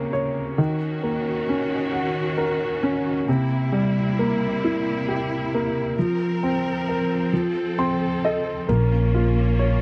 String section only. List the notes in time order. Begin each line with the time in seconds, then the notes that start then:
Already playing: C3 C#3 A#3
0.59 D#3 C#4 F#4
3.30 C3 A#3 E4
5.98 F3 C4 A#4
7.34 A4
8.68 A#3 C#4 F4